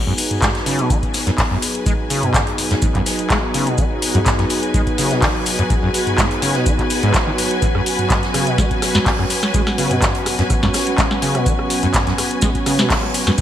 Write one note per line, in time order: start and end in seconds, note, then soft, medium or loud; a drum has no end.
0.00 13.41 F#3 medium
0.00 13.41 B3 medium
0.00 7.58 D#4 medium
0.00 13.41 F#4 medium
0.00 7.61 G#4 medium
0.00 13.41 B4 medium
0.07 0.13 F#2 loud
0.13 13.41 G#5 medium
0.18 open hi-hat loud
0.18 shaker medium
0.31 closed hi-hat medium
0.31 mid tom medium
0.42 0.49 G#3 medium
0.42 kick loud
0.42 snare loud
0.42 clap loud
0.42 closed hi-hat medium
0.42 mid tom medium
0.42 shaker medium
0.55 snare medium
0.55 closed hi-hat soft
0.66 0.80 C#3 medium
0.66 open hi-hat loud
0.66 shaker medium
0.79 0.92 B2 medium
0.79 closed hi-hat medium
0.90 0.97 D#3 loud
0.90 kick loud
0.90 closed hi-hat medium
0.90 shaker medium
1.03 kick medium
1.03 closed hi-hat soft
1.14 snare soft
1.14 open hi-hat loud
1.14 shaker medium
1.27 1.31 F#2 loud
1.27 snare soft
1.27 closed hi-hat medium
1.38 1.42 G#2 medium
1.38 kick loud
1.38 snare loud
1.38 clap loud
1.38 closed hi-hat medium
1.38 open hi-hat medium
1.51 1.57 F#2 loud
1.62 open hi-hat loud
1.62 shaker medium
1.75 closed hi-hat medium
1.86 1.93 G#3 medium
1.86 kick loud
1.86 closed hi-hat medium
1.86 shaker medium
2.10 2.24 C#3 medium
2.10 open hi-hat loud
2.10 shaker medium
2.23 2.36 B2 medium
2.23 closed hi-hat medium
2.23 mid tom medium
2.34 2.41 D#3 loud
2.34 kick loud
2.34 snare loud
2.34 clap loud
2.34 closed hi-hat medium
2.34 mid tom loud
2.34 shaker medium
2.47 closed hi-hat soft
2.58 open hi-hat loud
2.58 shaker medium
2.71 2.75 F#2 loud
2.71 snare medium
2.71 closed hi-hat medium
2.82 2.86 G#2 medium
2.82 kick loud
2.82 closed hi-hat medium
2.82 shaker medium
2.95 3.01 F#2 loud
2.95 kick medium
2.95 clap soft
2.95 closed hi-hat soft
3.06 snare loud
3.06 open hi-hat loud
3.06 shaker medium
3.19 closed hi-hat medium
3.30 3.37 G#3 medium
3.30 kick loud
3.30 snare medium
3.30 clap loud
3.30 closed hi-hat medium
3.30 shaker medium
3.54 3.68 C#3 medium
3.54 open hi-hat loud
3.54 shaker medium
3.67 3.80 B2 medium
3.67 closed hi-hat medium
3.78 3.85 D#3 loud
3.78 kick loud
3.78 closed hi-hat medium
3.78 shaker medium
4.02 open hi-hat loud
4.02 shaker medium
4.15 4.19 F#2 loud
4.15 closed hi-hat soft
4.15 mid tom medium
4.26 4.30 G#2 medium
4.26 kick loud
4.26 snare loud
4.26 clap loud
4.26 closed hi-hat medium
4.26 mid tom loud
4.26 shaker medium
4.39 4.45 F#2 loud
4.39 snare soft
4.39 closed hi-hat soft
4.50 open hi-hat loud
4.50 shaker medium
4.63 closed hi-hat soft
4.74 4.81 G#3 medium
4.74 kick loud
4.74 closed hi-hat medium
4.74 shaker medium
4.87 kick medium
4.87 closed hi-hat soft
4.98 5.12 C#3 medium
4.98 snare soft
4.98 open hi-hat loud
4.98 shaker medium
5.10 5.24 B2 medium
5.10 snare medium
5.10 closed hi-hat soft
5.22 5.29 D#3 loud
5.22 kick loud
5.22 snare loud
5.22 clap loud
5.22 closed hi-hat medium
5.22 open hi-hat medium
5.46 open hi-hat loud
5.46 shaker medium
5.59 5.63 F#2 loud
5.59 closed hi-hat soft
5.70 5.74 G#2 medium
5.70 kick loud
5.70 closed hi-hat medium
5.70 shaker medium
5.83 5.89 F#2 loud
5.94 open hi-hat loud
5.94 shaker medium
6.07 closed hi-hat soft
6.07 mid tom medium
6.18 6.25 G#3 medium
6.18 kick loud
6.18 snare loud
6.18 clap loud
6.18 closed hi-hat medium
6.18 mid tom medium
6.18 shaker medium
6.31 closed hi-hat soft
6.42 6.56 C#3 medium
6.42 open hi-hat loud
6.42 shaker medium
6.55 6.68 B2 medium
6.55 snare soft
6.55 closed hi-hat soft
6.66 6.73 D#3 loud
6.66 kick loud
6.66 closed hi-hat medium
6.66 shaker medium
6.79 kick medium
6.79 clap soft
6.79 closed hi-hat soft
6.90 open hi-hat loud
6.90 shaker medium
7.03 7.12 G#2 loud
7.03 closed hi-hat soft
7.14 7.18 G#3 medium
7.14 kick loud
7.14 snare loud
7.14 clap loud
7.14 closed hi-hat medium
7.14 shaker medium
7.27 7.31 D#3 loud
7.38 open hi-hat loud
7.38 shaker medium
7.51 closed hi-hat soft
7.62 7.66 G#2 medium
7.62 13.41 C#4 medium
7.62 13.41 F#4 medium
7.62 kick loud
7.62 closed hi-hat medium
7.62 shaker medium
7.75 7.81 F#2 loud
7.75 cross-stick medium
7.86 open hi-hat loud
7.86 shaker medium
7.99 closed hi-hat soft
7.99 mid tom medium
8.10 8.17 G#3 medium
8.10 kick loud
8.10 cross-stick soft
8.10 snare loud
8.10 clap loud
8.10 closed hi-hat medium
8.10 mid tom medium
8.10 shaker medium
8.23 snare soft
8.23 closed hi-hat soft
8.34 8.48 C#3 medium
8.34 cross-stick medium
8.34 open hi-hat loud
8.34 shaker medium
8.47 8.60 B2 medium
8.47 closed hi-hat soft
8.58 8.65 D#3 loud
8.58 kick loud
8.58 cross-stick soft
8.58 snare medium
8.58 closed hi-hat medium
8.58 shaker medium
8.71 kick medium
8.71 closed hi-hat soft
8.82 cross-stick medium
8.82 snare soft
8.82 open hi-hat loud
8.82 shaker medium
8.94 8.99 F#2 loud
8.94 snare soft
8.94 snare medium
8.94 closed hi-hat medium
9.06 9.10 G#2 medium
9.06 kick loud
9.06 snare loud
9.06 clap loud
9.06 closed hi-hat medium
9.06 open hi-hat medium
9.19 9.25 F#2 loud
9.19 cross-stick soft
9.30 open hi-hat loud
9.30 shaker medium
9.43 cross-stick medium
9.43 snare medium
9.43 closed hi-hat medium
9.54 9.61 G#3 medium
9.54 kick loud
9.54 closed hi-hat medium
9.54 shaker medium
9.67 cross-stick medium
9.67 snare medium
9.78 9.92 C#3 medium
9.78 open hi-hat loud
9.78 shaker medium
9.91 10.04 B2 medium
9.91 closed hi-hat medium
9.91 mid tom medium
10.02 10.09 D#3 loud
10.02 kick loud
10.02 cross-stick soft
10.02 snare loud
10.02 clap loud
10.02 closed hi-hat medium
10.02 mid tom medium
10.02 shaker medium
10.15 closed hi-hat soft
10.26 cross-stick medium
10.26 open hi-hat loud
10.26 shaker medium
10.39 10.43 F#2 loud
10.39 snare medium
10.39 closed hi-hat soft
10.50 10.54 G#2 medium
10.50 kick loud
10.50 cross-stick soft
10.50 closed hi-hat medium
10.50 shaker medium
10.63 10.69 F#2 loud
10.63 kick medium
10.63 snare medium
10.63 clap soft
10.63 closed hi-hat soft
10.74 cross-stick medium
10.74 snare loud
10.74 open hi-hat loud
10.74 shaker medium
10.87 closed hi-hat medium
10.98 11.05 G#3 medium
10.98 kick loud
10.98 snare loud
10.98 clap loud
10.98 closed hi-hat medium
10.98 shaker medium
11.11 cross-stick soft
11.11 snare medium
11.22 11.36 C#3 medium
11.22 open hi-hat loud
11.22 shaker medium
11.35 11.48 B2 medium
11.35 cross-stick medium
11.35 closed hi-hat medium
11.46 11.53 D#3 loud
11.46 kick loud
11.46 closed hi-hat medium
11.46 shaker medium
11.59 cross-stick medium
11.70 open hi-hat loud
11.70 shaker medium
11.83 11.87 F#2 loud
11.83 closed hi-hat medium
11.83 mid tom medium
11.94 11.98 G#2 medium
11.94 kick loud
11.94 cross-stick soft
11.94 snare loud
11.94 clap loud
11.94 closed hi-hat medium
11.94 mid tom medium
11.94 shaker medium
12.07 12.13 F#2 loud
12.07 snare medium
12.07 closed hi-hat soft
12.18 cross-stick medium
12.18 open hi-hat loud
12.18 shaker medium
12.31 closed hi-hat medium
12.42 12.49 G#3 medium
12.42 kick loud
12.42 cross-stick soft
12.42 snare medium
12.42 closed hi-hat medium
12.42 shaker medium
12.55 kick medium
12.55 closed hi-hat soft
12.66 12.80 C#3 medium
12.66 cross-stick medium
12.66 snare soft
12.66 open hi-hat medium
12.66 shaker medium
12.79 12.92 B2 medium
12.79 snare medium
12.79 closed hi-hat medium
12.90 12.97 D#3 loud
12.90 kick loud
12.90 snare loud
12.90 clap loud
12.90 closed hi-hat medium
12.90 open hi-hat medium
13.03 cross-stick soft
13.14 open hi-hat loud
13.14 shaker medium
13.27 13.31 F#2 loud
13.27 cross-stick medium
13.27 snare medium
13.27 closed hi-hat medium
13.38 13.41 G#2 medium
13.38 closed hi-hat medium
13.38 shaker medium